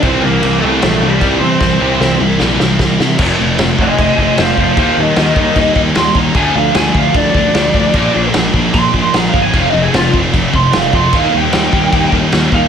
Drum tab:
CC |x-x-x-x-|--------|x-x-x-x-|x-x-x-x-|
SD |----o---|o-o-oooo|--o---o-|--o---o-|
BD |o-----o-|o-----o-|o--ooo-o|o--ooo-o|

CC |x-x-x-x-|x-x-x-x-|x-x-x-x-|x-x-x-x-|
SD |--o---o-|--o---o-|--o---o-|--o---o-|
BD |o--ooo-o|o--ooo-o|o--ooo-o|o--ooo-o|